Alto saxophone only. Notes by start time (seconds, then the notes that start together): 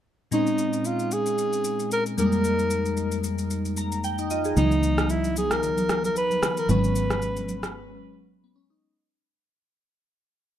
0.33 D#4
0.86 F4
1.13 G#4
1.92 A#4
2.19 A#4
4.58 D#4
5.11 E4
5.38 G#4
5.52 A#4
6.05 A#4
6.17 B4
6.58 A#4
6.70 B4